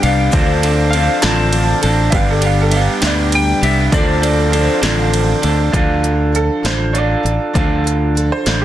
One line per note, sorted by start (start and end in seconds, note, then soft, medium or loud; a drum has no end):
0.00 0.28 C2 loud
0.00 0.32 G2 medium
0.00 0.30 D3 medium
0.00 0.33 G4 medium
0.00 0.32 B4 medium
0.00 0.89 F5 medium
0.00 0.32 G5 medium
0.00 5.69 D6 medium
0.00 ride medium
0.00 shaker soft
0.05 0.33 G3 soft
0.05 0.34 B3 soft
0.05 0.33 D4 soft
0.32 1.07 D2 loud
0.32 0.93 D3 medium
0.32 0.91 F3 medium
0.32 0.92 C4 medium
0.32 0.93 D4 medium
0.32 0.91 F4 medium
0.32 0.91 A4 medium
0.32 0.93 A4 medium
0.32 2.11 C5 medium
0.32 0.91 C5 medium
0.32 0.91 D5 medium
0.32 2.11 F5 medium
0.32 kick loud
0.32 ride medium
0.32 shaker medium
0.63 0.93 C4 medium
0.63 0.94 D4 medium
0.63 0.94 A4 medium
0.63 ride medium
0.91 1.23 F3 medium
0.91 1.22 C4 medium
0.91 1.22 D4 medium
0.91 1.22 A4 medium
0.91 1.23 F5 medium
0.91 ride medium
0.91 shaker soft
1.22 1.73 A1 medium
1.22 1.84 D3 medium
1.22 1.83 F3 medium
1.22 1.83 C4 medium
1.22 1.82 D4 medium
1.22 1.81 F4 medium
1.22 1.80 A4 medium
1.22 1.81 A4 medium
1.22 1.81 C5 medium
1.22 1.81 D5 medium
1.22 1.86 A5 loud
1.22 snare loud
1.22 ride medium
1.22 shaker loud
1.53 ride medium
1.68 shaker soft
1.82 2.08 A1 medium
1.82 2.12 C4 soft
1.82 2.12 D4 soft
1.82 2.12 A4 medium
1.82 ride medium
1.82 shaker soft
2.10 2.72 G2 loud
2.10 2.73 D3 medium
2.10 2.71 G3 medium
2.10 2.72 B3 medium
2.10 2.71 D4 medium
2.10 2.73 D4 medium
2.10 2.71 G4 medium
2.10 2.73 G4 loud
2.10 3.91 B4 medium
2.10 2.71 B4 medium
2.10 2.71 D5 loud
2.10 2.14 E5 medium
2.10 3.92 G5 medium
2.10 kick loud
2.10 ride loud
2.10 shaker medium
2.15 2.28 F5 loud
2.31 2.43 A4 medium
2.41 2.70 G3 medium
2.41 2.71 B3 medium
2.41 2.72 D4 medium
2.41 2.73 G4 medium
2.41 ride medium
2.46 2.58 F5 medium
2.60 2.74 A4 medium
2.60 shaker soft
2.71 3.02 G3 medium
2.71 3.02 B3 medium
2.71 3.02 D4 medium
2.71 3.02 G4 medium
2.71 2.75 E5 medium
2.71 ride medium
2.71 shaker soft
2.76 3.04 F5 medium
3.01 3.52 D2 loud
3.01 3.64 G2 medium
3.01 3.64 D3 medium
3.01 3.64 G3 medium
3.01 3.63 B3 medium
3.01 3.60 D4 medium
3.01 3.64 D4 medium
3.01 3.60 G4 medium
3.01 3.62 G4 medium
3.01 3.61 B4 medium
3.01 3.61 E5 medium
3.01 snare loud
3.01 ride loud
3.01 shaker loud
3.06 3.34 D5 medium
3.32 3.65 G5 loud
3.32 ride medium
3.48 shaker soft
3.62 3.87 C2 medium
3.62 3.93 G3 soft
3.62 3.94 B3 soft
3.62 3.94 D4 soft
3.62 3.93 G4 medium
3.62 3.93 E5 medium
3.62 ride medium
3.62 shaker soft
3.92 4.67 D2 medium
3.92 4.53 D3 medium
3.92 4.52 F3 medium
3.92 4.53 C4 medium
3.92 4.53 D4 medium
3.92 4.51 F4 medium
3.92 4.51 A4 medium
3.92 4.54 A4 medium
3.92 5.72 C5 medium
3.92 4.51 C5 medium
3.92 4.51 D5 medium
3.92 5.40 D5 medium
3.92 5.72 F5 medium
3.92 kick loud
3.92 ride medium
3.92 shaker loud
4.22 4.51 C4 medium
4.22 4.51 D4 medium
4.22 4.52 A4 medium
4.22 ride medium
4.22 shaker soft
4.40 shaker soft
4.53 4.83 F3 medium
4.53 4.83 C4 medium
4.53 4.82 D4 medium
4.53 4.82 A4 medium
4.53 ride medium
4.69 shaker soft
4.82 5.33 A1 loud
4.82 5.44 D3 medium
4.82 5.44 F3 medium
4.82 5.43 C4 medium
4.82 5.42 D4 medium
4.82 5.41 F4 medium
4.82 5.41 A4 medium
4.82 5.42 C5 medium
4.82 5.42 D5 medium
4.82 snare loud
4.82 ride medium
4.82 shaker loud
4.99 shaker soft
5.14 ride medium
5.14 shaker soft
5.42 5.69 D2 medium
5.42 5.73 C4 soft
5.42 5.72 D4 medium
5.42 5.73 A4 medium
5.42 ride medium
5.72 6.48 D2 medium
5.72 6.03 D3 medium
5.72 6.04 F3 medium
5.72 6.04 D4 medium
5.72 6.31 F4 medium
5.72 6.03 F4 medium
5.72 6.32 A4 medium
5.72 6.02 A4 medium
5.72 6.32 D5 medium
5.72 kick medium
5.72 closed hi-hat medium
6.03 6.33 D4 soft
6.03 6.33 F4 medium
6.03 6.34 A4 medium
6.03 closed hi-hat medium
6.32 6.63 F3 medium
6.32 6.63 D4 medium
6.32 6.63 F4 medium
6.32 6.62 A4 medium
6.32 6.64 A4 medium
6.32 closed hi-hat medium
6.62 7.14 A1 medium
6.62 6.95 D3 soft
6.62 6.92 F3 soft
6.62 6.93 D4 soft
6.62 7.22 F4 medium
6.62 6.93 F4 medium
6.62 6.94 A4 medium
6.62 7.22 A4 soft
6.62 6.95 C5 medium
6.62 7.23 F5 medium
6.62 snare loud
6.62 closed hi-hat medium
6.93 7.52 D3 medium
6.93 7.24 F3 soft
6.93 7.24 D4 medium
6.93 7.23 F4 medium
6.93 7.22 A4 medium
6.93 6.97 C#5 medium
6.93 closed hi-hat medium
6.98 8.29 D5 medium
7.23 7.37 A1 medium
7.23 7.53 D4 soft
7.23 7.54 F4 soft
7.23 7.54 A4 soft
7.23 closed hi-hat medium
7.53 8.30 D2 medium
7.53 7.85 D3 medium
7.53 7.85 F3 medium
7.53 7.85 D4 medium
7.53 8.13 F4 medium
7.53 7.84 F4 medium
7.53 8.13 A4 medium
7.53 7.83 A4 medium
7.53 8.14 D5 medium
7.53 kick medium
7.53 closed hi-hat medium
7.84 8.15 D4 soft
7.84 8.15 F4 medium
7.84 8.15 A4 medium
7.84 closed hi-hat medium
8.15 8.46 F3 medium
8.15 8.45 D4 medium
8.15 8.45 F4 medium
8.15 8.44 A4 medium
8.15 closed hi-hat medium
8.32 8.61 C5 medium
8.45 8.65 A1 medium
8.45 8.65 D3 soft
8.45 8.65 F3 medium
8.45 8.65 D4 soft
8.45 8.65 F4 medium
8.45 8.65 F4 soft
8.45 8.65 A4 soft
8.45 8.65 D5 medium
8.45 snare loud
8.45 closed hi-hat medium
8.61 8.65 G4 medium